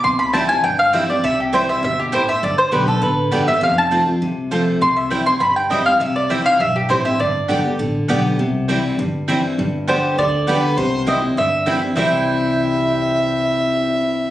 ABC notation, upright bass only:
X:1
M:4/4
L:1/8
Q:1/4=201
K:C
V:1 name="Upright bass" clef=bass
C,,4 G,,,4 | C,,4 G,,,4 | G,,,2 B,,,2 A,,,2 G,,,2 | F,,,4 C,,4 |
C,,4 G,,,4 | C,,4 B,,,2 A,,,2 | G,,,2 G,,,2 A,,,2 B,,,2 | C,,4 G,,,4 |
G,,,4 D,,4 | C,,4 G,,,4 | C,,8- | C,,8 |]